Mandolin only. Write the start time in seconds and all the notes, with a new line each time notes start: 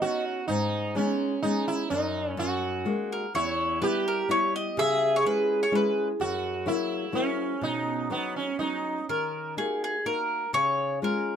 Already playing: D#5
3.12 A#4
3.35 C#5
3.82 B4
4.08 A#4
4.31 C#5
4.56 D#5
4.79 E5
5.16 C#5
5.26 B4
5.63 C#5
5.75 B4
9.09 A#4
9.58 G#4
9.84 G#4
10.06 A#4
10.54 C#5
11.04 A#4